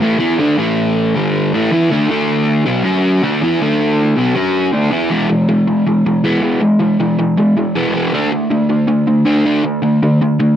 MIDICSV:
0, 0, Header, 1, 2, 480
1, 0, Start_track
1, 0, Tempo, 377121
1, 741, Time_signature, 4, 2, 24, 8
1, 13447, End_track
2, 0, Start_track
2, 0, Title_t, "Overdriven electric guitar"
2, 0, Program_c, 0, 29
2, 10, Note_on_c, 0, 45, 94
2, 20, Note_on_c, 0, 52, 89
2, 35, Note_on_c, 0, 57, 98
2, 216, Note_off_c, 0, 52, 0
2, 226, Note_off_c, 0, 45, 0
2, 231, Note_on_c, 0, 52, 83
2, 245, Note_off_c, 0, 57, 0
2, 248, Note_on_c, 0, 59, 93
2, 250, Note_on_c, 0, 64, 103
2, 479, Note_off_c, 0, 52, 0
2, 485, Note_on_c, 0, 50, 84
2, 487, Note_off_c, 0, 59, 0
2, 488, Note_off_c, 0, 64, 0
2, 493, Note_on_c, 0, 57, 94
2, 506, Note_on_c, 0, 62, 111
2, 720, Note_off_c, 0, 50, 0
2, 725, Note_on_c, 0, 45, 94
2, 730, Note_off_c, 0, 57, 0
2, 736, Note_off_c, 0, 62, 0
2, 737, Note_on_c, 0, 52, 92
2, 744, Note_on_c, 0, 57, 102
2, 1443, Note_off_c, 0, 45, 0
2, 1449, Note_off_c, 0, 52, 0
2, 1453, Note_off_c, 0, 57, 0
2, 1454, Note_on_c, 0, 43, 92
2, 1469, Note_on_c, 0, 50, 94
2, 1478, Note_on_c, 0, 55, 101
2, 1928, Note_off_c, 0, 43, 0
2, 1935, Note_off_c, 0, 50, 0
2, 1940, Note_off_c, 0, 55, 0
2, 1947, Note_on_c, 0, 45, 90
2, 1958, Note_on_c, 0, 52, 96
2, 1964, Note_on_c, 0, 57, 102
2, 2162, Note_off_c, 0, 52, 0
2, 2173, Note_off_c, 0, 45, 0
2, 2178, Note_on_c, 0, 52, 91
2, 2183, Note_off_c, 0, 57, 0
2, 2194, Note_on_c, 0, 59, 105
2, 2197, Note_on_c, 0, 64, 104
2, 2409, Note_off_c, 0, 52, 0
2, 2417, Note_on_c, 0, 50, 91
2, 2418, Note_off_c, 0, 59, 0
2, 2419, Note_off_c, 0, 64, 0
2, 2433, Note_on_c, 0, 57, 103
2, 2446, Note_on_c, 0, 62, 95
2, 2640, Note_off_c, 0, 50, 0
2, 2656, Note_on_c, 0, 50, 85
2, 2657, Note_off_c, 0, 57, 0
2, 2663, Note_off_c, 0, 62, 0
2, 2676, Note_on_c, 0, 57, 97
2, 2684, Note_on_c, 0, 62, 115
2, 3367, Note_off_c, 0, 50, 0
2, 3375, Note_off_c, 0, 57, 0
2, 3380, Note_on_c, 0, 47, 92
2, 3380, Note_on_c, 0, 54, 101
2, 3381, Note_off_c, 0, 62, 0
2, 3397, Note_on_c, 0, 59, 109
2, 3595, Note_off_c, 0, 54, 0
2, 3605, Note_off_c, 0, 47, 0
2, 3610, Note_on_c, 0, 54, 100
2, 3618, Note_off_c, 0, 59, 0
2, 3621, Note_on_c, 0, 61, 105
2, 3635, Note_on_c, 0, 66, 112
2, 4084, Note_off_c, 0, 54, 0
2, 4090, Note_off_c, 0, 61, 0
2, 4097, Note_off_c, 0, 66, 0
2, 4112, Note_on_c, 0, 50, 100
2, 4121, Note_on_c, 0, 57, 95
2, 4130, Note_on_c, 0, 62, 109
2, 4335, Note_off_c, 0, 50, 0
2, 4340, Note_off_c, 0, 57, 0
2, 4344, Note_off_c, 0, 62, 0
2, 4351, Note_on_c, 0, 52, 94
2, 4363, Note_on_c, 0, 59, 97
2, 4374, Note_on_c, 0, 64, 98
2, 4575, Note_off_c, 0, 52, 0
2, 4581, Note_off_c, 0, 59, 0
2, 4586, Note_off_c, 0, 64, 0
2, 4591, Note_on_c, 0, 50, 94
2, 4602, Note_on_c, 0, 57, 106
2, 4614, Note_on_c, 0, 62, 113
2, 5295, Note_off_c, 0, 50, 0
2, 5300, Note_off_c, 0, 57, 0
2, 5302, Note_on_c, 0, 47, 94
2, 5306, Note_off_c, 0, 62, 0
2, 5314, Note_on_c, 0, 54, 99
2, 5332, Note_on_c, 0, 59, 108
2, 5526, Note_off_c, 0, 54, 0
2, 5530, Note_off_c, 0, 47, 0
2, 5541, Note_on_c, 0, 54, 95
2, 5545, Note_off_c, 0, 59, 0
2, 5555, Note_on_c, 0, 66, 103
2, 5557, Note_on_c, 0, 61, 101
2, 6006, Note_off_c, 0, 54, 0
2, 6011, Note_on_c, 0, 50, 84
2, 6013, Note_off_c, 0, 61, 0
2, 6017, Note_off_c, 0, 66, 0
2, 6018, Note_on_c, 0, 57, 95
2, 6026, Note_on_c, 0, 62, 101
2, 6245, Note_off_c, 0, 50, 0
2, 6246, Note_off_c, 0, 57, 0
2, 6251, Note_on_c, 0, 52, 85
2, 6251, Note_on_c, 0, 59, 91
2, 6253, Note_off_c, 0, 62, 0
2, 6267, Note_on_c, 0, 64, 99
2, 6476, Note_off_c, 0, 52, 0
2, 6485, Note_off_c, 0, 59, 0
2, 6491, Note_on_c, 0, 52, 91
2, 6493, Note_off_c, 0, 64, 0
2, 6503, Note_on_c, 0, 56, 89
2, 6514, Note_on_c, 0, 59, 99
2, 6719, Note_off_c, 0, 52, 0
2, 6725, Note_off_c, 0, 56, 0
2, 6730, Note_off_c, 0, 59, 0
2, 6741, Note_on_c, 0, 56, 80
2, 6743, Note_on_c, 0, 52, 73
2, 6954, Note_off_c, 0, 56, 0
2, 6955, Note_off_c, 0, 52, 0
2, 6982, Note_on_c, 0, 52, 77
2, 6986, Note_on_c, 0, 56, 87
2, 7195, Note_off_c, 0, 52, 0
2, 7197, Note_off_c, 0, 56, 0
2, 7222, Note_on_c, 0, 52, 67
2, 7226, Note_on_c, 0, 56, 77
2, 7435, Note_off_c, 0, 52, 0
2, 7437, Note_off_c, 0, 56, 0
2, 7468, Note_on_c, 0, 52, 72
2, 7478, Note_on_c, 0, 56, 80
2, 7679, Note_off_c, 0, 52, 0
2, 7683, Note_off_c, 0, 56, 0
2, 7719, Note_on_c, 0, 52, 67
2, 7722, Note_on_c, 0, 56, 74
2, 7924, Note_off_c, 0, 52, 0
2, 7926, Note_off_c, 0, 56, 0
2, 7945, Note_on_c, 0, 52, 82
2, 7954, Note_on_c, 0, 56, 93
2, 7961, Note_on_c, 0, 59, 105
2, 8158, Note_off_c, 0, 52, 0
2, 8168, Note_off_c, 0, 56, 0
2, 8173, Note_on_c, 0, 52, 85
2, 8175, Note_off_c, 0, 59, 0
2, 8183, Note_on_c, 0, 56, 102
2, 8191, Note_on_c, 0, 59, 109
2, 8402, Note_off_c, 0, 52, 0
2, 8406, Note_off_c, 0, 56, 0
2, 8410, Note_off_c, 0, 59, 0
2, 8415, Note_on_c, 0, 52, 69
2, 8420, Note_on_c, 0, 56, 80
2, 8633, Note_off_c, 0, 52, 0
2, 8636, Note_off_c, 0, 56, 0
2, 8655, Note_on_c, 0, 52, 71
2, 8664, Note_on_c, 0, 56, 76
2, 8873, Note_off_c, 0, 52, 0
2, 8878, Note_off_c, 0, 56, 0
2, 8913, Note_on_c, 0, 56, 83
2, 8914, Note_on_c, 0, 52, 78
2, 9123, Note_off_c, 0, 52, 0
2, 9123, Note_off_c, 0, 56, 0
2, 9155, Note_on_c, 0, 56, 85
2, 9158, Note_on_c, 0, 52, 71
2, 9364, Note_off_c, 0, 56, 0
2, 9365, Note_off_c, 0, 52, 0
2, 9394, Note_on_c, 0, 56, 81
2, 9398, Note_on_c, 0, 52, 74
2, 9604, Note_off_c, 0, 56, 0
2, 9606, Note_off_c, 0, 52, 0
2, 9635, Note_on_c, 0, 52, 63
2, 9644, Note_on_c, 0, 56, 75
2, 9844, Note_off_c, 0, 52, 0
2, 9849, Note_off_c, 0, 56, 0
2, 9869, Note_on_c, 0, 52, 90
2, 9870, Note_on_c, 0, 56, 91
2, 9889, Note_on_c, 0, 59, 99
2, 10083, Note_off_c, 0, 52, 0
2, 10092, Note_off_c, 0, 56, 0
2, 10098, Note_on_c, 0, 52, 92
2, 10101, Note_off_c, 0, 59, 0
2, 10114, Note_on_c, 0, 56, 101
2, 10123, Note_on_c, 0, 59, 106
2, 10326, Note_off_c, 0, 52, 0
2, 10334, Note_off_c, 0, 56, 0
2, 10338, Note_off_c, 0, 59, 0
2, 10347, Note_on_c, 0, 50, 84
2, 10357, Note_on_c, 0, 57, 91
2, 10367, Note_on_c, 0, 62, 108
2, 10568, Note_off_c, 0, 50, 0
2, 10572, Note_off_c, 0, 57, 0
2, 10580, Note_off_c, 0, 62, 0
2, 10583, Note_on_c, 0, 50, 72
2, 10588, Note_on_c, 0, 57, 82
2, 10799, Note_off_c, 0, 50, 0
2, 10801, Note_off_c, 0, 57, 0
2, 10825, Note_on_c, 0, 50, 74
2, 10836, Note_on_c, 0, 57, 84
2, 11040, Note_off_c, 0, 50, 0
2, 11045, Note_off_c, 0, 57, 0
2, 11065, Note_on_c, 0, 50, 75
2, 11065, Note_on_c, 0, 57, 79
2, 11280, Note_off_c, 0, 50, 0
2, 11280, Note_off_c, 0, 57, 0
2, 11298, Note_on_c, 0, 50, 74
2, 11303, Note_on_c, 0, 57, 91
2, 11517, Note_off_c, 0, 50, 0
2, 11520, Note_off_c, 0, 57, 0
2, 11549, Note_on_c, 0, 50, 72
2, 11553, Note_on_c, 0, 57, 70
2, 11763, Note_off_c, 0, 50, 0
2, 11765, Note_off_c, 0, 57, 0
2, 11777, Note_on_c, 0, 50, 91
2, 11791, Note_on_c, 0, 57, 95
2, 11794, Note_on_c, 0, 62, 101
2, 12007, Note_off_c, 0, 50, 0
2, 12013, Note_off_c, 0, 57, 0
2, 12015, Note_off_c, 0, 62, 0
2, 12030, Note_on_c, 0, 50, 84
2, 12042, Note_on_c, 0, 57, 93
2, 12046, Note_on_c, 0, 62, 96
2, 12253, Note_off_c, 0, 50, 0
2, 12254, Note_off_c, 0, 57, 0
2, 12261, Note_off_c, 0, 62, 0
2, 12268, Note_on_c, 0, 50, 71
2, 12269, Note_on_c, 0, 57, 79
2, 12482, Note_off_c, 0, 50, 0
2, 12483, Note_off_c, 0, 57, 0
2, 12501, Note_on_c, 0, 50, 68
2, 12514, Note_on_c, 0, 57, 75
2, 12719, Note_off_c, 0, 50, 0
2, 12725, Note_off_c, 0, 57, 0
2, 12763, Note_on_c, 0, 50, 78
2, 12766, Note_on_c, 0, 57, 86
2, 12970, Note_off_c, 0, 50, 0
2, 12971, Note_off_c, 0, 57, 0
2, 13000, Note_on_c, 0, 50, 73
2, 13008, Note_on_c, 0, 57, 78
2, 13209, Note_off_c, 0, 50, 0
2, 13213, Note_off_c, 0, 57, 0
2, 13235, Note_on_c, 0, 50, 73
2, 13242, Note_on_c, 0, 57, 78
2, 13446, Note_off_c, 0, 50, 0
2, 13447, Note_off_c, 0, 57, 0
2, 13447, End_track
0, 0, End_of_file